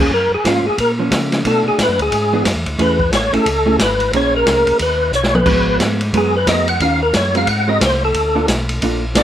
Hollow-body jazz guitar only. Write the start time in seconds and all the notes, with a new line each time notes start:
0.00 C#4
0.45 F3 A#3 C#4
0.99 F3 A#3 C#4
1.45 A3 D4 F#4
2.33 E3 B3 D4 G#4
2.79 A3 C#4 E4 G#4
3.33 A3 C#4 E4 G#4
3.66 A3 C#4 E4 G#4
4.14 A#3 C#4 G#4 C5
5.47 G#3 B3 F#4
6.14 G#3 B3 F#4 A#4
6.48 G#3 B3 F#4 A#4
6.81 D#3 C#4 F#4 A#4
7.35 G#3 C4 F#4 A#4
7.68 G#3 C4 F#4 A#4
8.35 A#3 D4 F4 A4
8.83 A#3 D4 F4 A4
9.16 A#3 D4 F4 A4